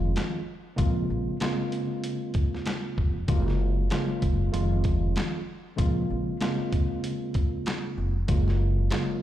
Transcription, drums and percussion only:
0.16 snare, closed hi-hat
0.78 kick, closed hi-hat
1.40 snare, closed hi-hat
1.72 closed hi-hat
2.04 closed hi-hat
2.34 kick, closed hi-hat
2.54 snare
2.66 snare, closed hi-hat
2.98 kick
3.28 kick, closed hi-hat
3.48 snare
3.90 snare, closed hi-hat
4.22 kick, closed hi-hat
4.54 closed hi-hat
4.84 kick, closed hi-hat
5.16 snare, closed hi-hat
5.78 kick, closed hi-hat
6.41 snare, closed hi-hat
6.72 kick, closed hi-hat
7.04 closed hi-hat
7.34 kick, closed hi-hat
7.66 snare, closed hi-hat
8.28 kick, closed hi-hat
8.48 snare
8.90 snare, closed hi-hat

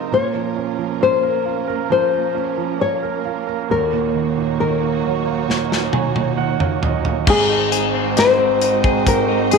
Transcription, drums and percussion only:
5.50 snare
5.72 snare
5.93 high tom
6.16 high tom
6.60 mid tom
6.83 floor tom
7.05 floor tom
7.27 kick, crash
7.72 closed hi-hat
8.17 snare, closed hi-hat
8.61 closed hi-hat
8.84 kick
9.07 kick, closed hi-hat
9.51 closed hi-hat

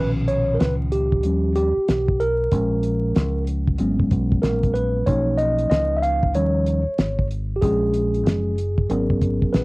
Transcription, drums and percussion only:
0.28 closed hi-hat
0.60 snare, closed hi-hat
0.92 closed hi-hat
1.12 kick
1.23 closed hi-hat
1.56 closed hi-hat
1.88 snare, closed hi-hat
2.08 kick
2.20 closed hi-hat
2.51 kick, closed hi-hat
2.83 closed hi-hat
3.16 snare, closed hi-hat
3.47 closed hi-hat
3.67 kick
3.78 closed hi-hat
3.99 kick
4.11 kick, closed hi-hat
4.32 kick
4.43 snare, closed hi-hat
4.63 kick, closed hi-hat
4.75 closed hi-hat
5.07 kick, closed hi-hat
5.38 closed hi-hat
5.58 closed hi-hat
5.71 snare, closed hi-hat
6.03 closed hi-hat
6.23 kick
6.34 closed hi-hat
6.66 closed hi-hat
6.98 snare, closed hi-hat
7.19 kick
7.31 closed hi-hat
7.62 kick, closed hi-hat
7.94 closed hi-hat
8.14 closed hi-hat
8.26 snare, closed hi-hat
8.58 closed hi-hat
8.78 kick
8.90 closed hi-hat
9.10 kick
9.22 kick, closed hi-hat
9.42 kick
9.54 snare, closed hi-hat

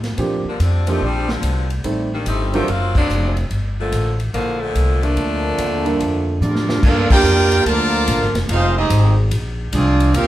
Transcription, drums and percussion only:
0.04 snare, ride
0.18 kick, ride
0.60 kick, hi-hat pedal, ride
0.87 ride
1.01 kick
1.29 snare
1.43 kick, hi-hat pedal, ride
1.70 ride
1.84 kick, ride
2.26 kick, hi-hat pedal, ride
2.54 ride
2.68 kick, ride
2.95 kick, crash
3.10 hi-hat pedal
3.37 ride
3.51 kick, ride
3.92 kick, hi-hat pedal, ride
4.20 ride
4.34 kick, ride
4.75 kick, hi-hat pedal, ride
5.03 ride
5.17 kick, ride
5.58 kick, hi-hat pedal, ride
5.86 ride
6.00 kick, ride
6.42 hi-hat pedal, high tom
6.56 snare
6.69 snare
6.83 kick, crash
7.10 kick, crash
7.24 hi-hat pedal
7.52 ride
7.66 kick, ride
8.07 kick, hi-hat pedal, ride
8.22 snare
8.35 snare, ride
8.49 kick, ride
8.90 kick, hi-hat pedal, ride
9.31 kick, ride
9.73 kick, hi-hat pedal, ride
10.00 ride
10.14 kick, ride

